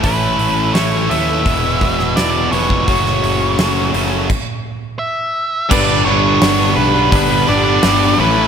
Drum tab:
CC |----------------|--------x-------|x---------------|
HH |o-o-o-o-o-o-o-o-|o-o-o-o---------|----o---o---o---|
SD |----o------oo---|-o--o-----------|----o-------o---|
BD |o-------o-o----o|o-------o-------|o-------o-------|